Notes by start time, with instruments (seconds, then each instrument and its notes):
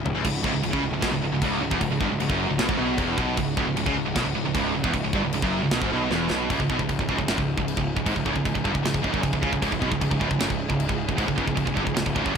Already playing: string section C#3 G#3 E4 G#4
0.06 picked electric bass C#1, distorted electric guitar C#2, floor tom
0.15 picked electric bass C#1, distorted electric guitar C#2
0.25 picked electric bass C#1, distorted electric guitar C#2, string section F#4, kick, crash
0.44 picked electric bass C#1, distorted electric guitar C#2, kick
0.54 picked electric bass C#1, distorted electric guitar C#2
0.63 picked electric bass C#1, distorted electric guitar C#2, crash
0.73 picked electric bass C#2, distorted electric guitar C#3, kick
0.83 picked electric bass C#1, distorted electric guitar C#2
0.94 picked electric bass C#1, distorted electric guitar C#2
1.02 picked electric bass B1, distorted electric guitar B2, kick, snare, crash
1.13 picked electric bass C#1, distorted electric guitar C#2
1.22 picked electric bass C#1, distorted electric guitar C#2
1.32 picked electric bass C#1, distorted electric guitar C#2
1.42 picked electric bass C#1, distorted electric guitar C#2, kick, crash
1.60 picked electric bass C#1, distorted electric guitar C#2
1.71 picked electric bass E1, distorted electric guitar E2, kick
1.81 picked electric bass C#1, distorted electric guitar C#2, kick, crash
1.91 picked electric bass C#1, distorted electric guitar C#2
2.01 picked electric bass G1, distorted electric guitar G2, kick
2.11 picked electric bass C#1, distorted electric guitar C#2
2.20 picked electric bass C#1, distorted electric guitar C#2, crash
2.30 picked electric bass F#1, distorted electric guitar F#2, kick
2.49 picked electric bass C#1, distorted electric guitar C#2
2.58 picked electric bass B1, distorted electric guitar B2, snare, crash
2.69 picked electric bass G#1, distorted electric guitar G#2, kick
2.78 picked electric bass B1, distorted electric guitar B2
2.98 picked electric bass E1, distorted electric guitar E2, kick, crash
3.18 picked electric bass B1, distorted electric guitar B2, kick
3.37 picked electric bass C#1, distorted electric guitar C#2, kick, crash
3.57 picked electric bass C#1, distorted electric guitar C#2, kick
3.67 picked electric bass C#1, distorted electric guitar C#2
3.76 picked electric bass C#1, distorted electric guitar C#2, crash
3.86 picked electric bass C#2, distorted electric guitar C#3, kick
3.96 picked electric bass C#1, distorted electric guitar C#2
4.05 picked electric bass C#1, distorted electric guitar C#2
4.15 picked electric bass B1, distorted electric guitar B2, kick, snare, crash
4.25 picked electric bass C#1, distorted electric guitar C#2
4.36 picked electric bass C#1, distorted electric guitar C#2
4.45 picked electric bass C#1, distorted electric guitar C#2
4.55 picked electric bass C#1, distorted electric guitar C#2, kick, crash
4.74 picked electric bass C#1, distorted electric guitar C#2
4.84 picked electric bass E1, distorted electric guitar E2, kick
4.93 picked electric bass C#1, distorted electric guitar C#2, kick, crash
5.04 picked electric bass C#1, distorted electric guitar C#2
5.13 picked electric bass G1, distorted electric guitar G2, kick
5.24 picked electric bass C#1, distorted electric guitar C#2
5.33 picked electric bass C#1, distorted electric guitar C#2, crash
5.42 picked electric bass F#1, distorted electric guitar F#2, kick
5.63 picked electric bass C#1, distorted electric guitar C#2
5.71 picked electric bass B1, distorted electric guitar B2, snare, crash
5.82 picked electric bass G#1, distorted electric guitar G#2, kick
5.91 picked electric bass B1, distorted electric guitar B2
6.11 picked electric bass E1, distorted electric guitar E2, snare
6.30 picked electric bass B1, distorted electric guitar B2, snare
6.49 picked electric bass C#1, distorted electric guitar C#2, string section C#3 G#3 E4 G#4, kick, china
6.59 picked electric bass C#1, distorted electric guitar C#2, kick
6.69 picked electric bass B1, distorted electric guitar B2, kick
6.79 picked electric bass C#1, distorted electric guitar C#2, kick
6.89 picked electric bass C#1, distorted electric guitar C#2, kick, china
6.99 picked electric bass C#1, distorted electric guitar C#2, kick
7.09 picked electric bass C#1, distorted electric guitar C#2, kick
7.18 picked electric bass C#1, distorted electric guitar C#2, kick
7.28 picked electric bass F#1, distorted electric guitar F#2, snare, china
7.38 picked electric bass C#1, distorted electric guitar C#2, kick
7.57 picked electric bass C#1, distorted electric guitar C#2, kick
7.68 china
7.77 picked electric bass C#1, distorted electric guitar C#2, kick
7.96 picked electric bass C#1, distorted electric guitar C#2, kick
8.06 picked electric bass G#1, distorted electric guitar G#2, kick, china
8.15 picked electric bass C#1, distorted electric guitar C#2, kick
8.26 picked electric bass C#1, distorted electric guitar C#2, kick
8.36 picked electric bass C#1, distorted electric guitar C#2, kick
8.45 picked electric bass C#1, distorted electric guitar C#2, kick, china
8.55 picked electric bass C#1, distorted electric guitar C#2, kick
8.64 picked electric bass G1, distorted electric guitar G2, kick
8.74 picked electric bass C#1, distorted electric guitar C#2, kick
8.83 picked electric bass C#1, distorted electric guitar C#2, snare, china
8.93 picked electric bass C#1, distorted electric guitar C#2, kick
9.02 picked electric bass C#1, distorted electric guitar C#2, kick
9.12 picked electric bass F#1, distorted electric guitar F#2, kick
9.22 picked electric bass C#1, distorted electric guitar C#2, kick, china
9.33 picked electric bass C#1, distorted electric guitar C#2, kick
9.42 picked electric bass C#2, distorted electric guitar C#3, kick
9.53 picked electric bass C#1, distorted electric guitar C#2, kick
9.62 picked electric bass C#1, distorted electric guitar C#2, kick, china
9.72 picked electric bass C#1, distorted electric guitar C#2, kick
9.81 picked electric bass B1, distorted electric guitar B2, kick
9.91 picked electric bass C#1, distorted electric guitar C#2, kick
10.01 picked electric bass C#1, distorted electric guitar C#2, kick, china
10.11 picked electric bass C#1, distorted electric guitar C#2, kick
10.21 picked electric bass C#1, distorted electric guitar C#2, kick
10.31 picked electric bass C#1, distorted electric guitar C#2, kick
10.40 picked electric bass F#1, distorted electric guitar F#2, snare, china
10.50 picked electric bass C#1, distorted electric guitar C#2, kick
10.70 picked electric bass C#1, distorted electric guitar C#2, kick
10.80 china
10.89 picked electric bass C#1, distorted electric guitar C#2, kick
11.08 picked electric bass C#1, distorted electric guitar C#2, kick
11.18 picked electric bass G#1, distorted electric guitar G#2, kick, china
11.28 picked electric bass C#1, distorted electric guitar C#2, kick
11.38 picked electric bass C#1, distorted electric guitar C#2, kick
11.47 picked electric bass C#1, distorted electric guitar C#2, kick
11.56 picked electric bass C#1, distorted electric guitar C#2, kick, china
11.67 picked electric bass C#1, distorted electric guitar C#2, kick
11.76 picked electric bass G1, distorted electric guitar G2, kick
11.86 picked electric bass C#1, distorted electric guitar C#2, kick
11.96 picked electric bass C#1, distorted electric guitar C#2, snare, china
12.06 picked electric bass C#1, distorted electric guitar C#2, kick
12.16 picked electric bass C#1, distorted electric guitar C#2, kick
12.26 picked electric bass F#1, distorted electric guitar F#2, kick